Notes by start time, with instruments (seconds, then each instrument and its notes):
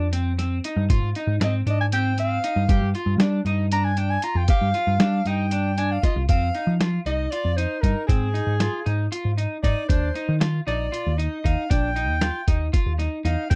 Already playing: picked electric bass F2
0.13 clean electric guitar C4, closed hi-hat
0.38 clean electric guitar C4, snare, closed hi-hat
0.64 clean electric guitar D#4, closed hi-hat
0.77 picked electric bass G2
0.90 picked electric bass G#2, clean electric guitar F4, kick, closed hi-hat
1.02 picked electric bass G#2
1.15 clean electric guitar D#4, closed hi-hat
1.27 picked electric bass G#2
1.41 picked electric bass G#2, clean electric guitar C4, soprano saxophone D#5, snare, closed hi-hat
1.66 picked electric bass G#2, clean electric guitar D4, soprano saxophone D#5, closed hi-hat
1.81 soprano saxophone G#5
1.92 clean electric guitar C4, soprano saxophone G5, closed hi-hat
2.18 clean electric guitar C4, soprano saxophone F5, closed hi-hat
2.44 clean electric guitar D#4, closed hi-hat
2.56 picked electric bass G2
2.68 picked electric bass G2, clean electric guitar G4, kick, closed hi-hat
2.82 picked electric bass G2
2.95 clean electric guitar F4, closed hi-hat
3.06 picked electric bass G2
3.18 picked electric bass G3, clean electric guitar D4, snare, closed hi-hat
3.45 picked electric bass G2, clean electric guitar D#4, closed hi-hat
3.72 clean electric guitar D4, soprano saxophone A#5, closed hi-hat
3.84 soprano saxophone G#5
3.97 clean electric guitar D4, soprano saxophone G5, closed hi-hat
4.10 soprano saxophone G#5
4.22 clean electric guitar F4, soprano saxophone A#5, closed hi-hat
4.35 picked electric bass F2, soprano saxophone G5
4.48 clean electric guitar G4, soprano saxophone F5, kick, closed hi-hat
4.61 picked electric bass G2
4.74 clean electric guitar F4, snare, closed hi-hat
4.87 picked electric bass G2
5.00 picked electric bass G3, clean electric guitar D4, snare, closed hi-hat
5.25 picked electric bass G2, clean electric guitar D#4, soprano saxophone G5, closed hi-hat
5.51 clean electric guitar D4, closed hi-hat
5.78 clean electric guitar D4, soprano saxophone G#5, closed hi-hat
5.92 soprano saxophone F5
6.03 clean electric guitar F4, soprano saxophone D#5, kick, snare, closed hi-hat
6.16 picked electric bass C2
6.29 picked electric bass F2, clean electric guitar C4, soprano saxophone F5, kick, closed hi-hat
6.54 clean electric guitar D#4, closed hi-hat
6.67 picked electric bass F3
6.81 clean electric guitar F4, snare, closed hi-hat
7.06 picked electric bass C2, clean electric guitar D#4, soprano saxophone D#5, snare, closed hi-hat
7.31 clean electric guitar F4, soprano saxophone D5, closed hi-hat
7.45 picked electric bass F2
7.57 clean electric guitar D#4, soprano saxophone C5, closed hi-hat
7.81 picked electric bass G2, clean electric guitar D#4, soprano saxophone A#4, kick, closed hi-hat
8.07 picked electric bass G#2, clean electric guitar C4, soprano saxophone G#4, kick, closed hi-hat
8.34 clean electric guitar D#4, closed hi-hat
8.47 picked electric bass G#2
8.60 clean electric guitar F4, snare, closed hi-hat
8.86 picked electric bass G#2, clean electric guitar D#4, closed hi-hat
9.12 clean electric guitar F4, closed hi-hat
9.25 picked electric bass G#2
9.38 clean electric guitar D#4, closed hi-hat
9.63 picked electric bass G#2, clean electric guitar D#4, soprano saxophone D5, kick, snare, closed hi-hat
9.89 picked electric bass D#2, clean electric guitar D4, soprano saxophone C5, kick, closed hi-hat
10.15 clean electric guitar D#4, closed hi-hat
10.29 picked electric bass D#3
10.40 clean electric guitar F4, snare, closed hi-hat
10.67 picked electric bass A#1, clean electric guitar D#4, soprano saxophone D5, closed hi-hat
10.92 clean electric guitar F4, closed hi-hat
11.07 picked electric bass D#2
11.18 clean electric guitar D#4, soprano saxophone D#5, closed hi-hat
11.44 picked electric bass D#2, clean electric guitar D#4, soprano saxophone F5, kick, closed hi-hat
11.70 picked electric bass A#1, clean electric guitar D4, soprano saxophone G5, kick, closed hi-hat
11.96 clean electric guitar D#4, closed hi-hat
12.09 picked electric bass D#2
12.21 clean electric guitar F4, snare, closed hi-hat
12.48 picked electric bass D#2, clean electric guitar D#4, kick, closed hi-hat
12.73 clean electric guitar F4, kick, closed hi-hat
12.86 picked electric bass D#2
12.99 clean electric guitar D#4, snare, closed hi-hat
13.25 picked electric bass E2, clean electric guitar D#4, soprano saxophone F5, snare, closed hi-hat
13.50 picked electric bass F2, clean electric guitar C4, soprano saxophone G5, kick, closed hi-hat